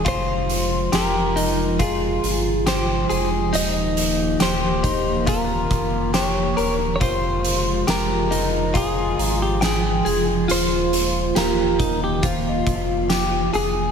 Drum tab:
HH |xxxxxxxx|xxxxxxxx|xxxxxxxx|xxxxxxxx|
TB |--x---x-|--x---x-|--x---x-|--x---x-|
SD |--o---o-|--o---o-|--o---o-|--o---o-|
BD |o---o---|---ooo--|o---o---|---ooo--|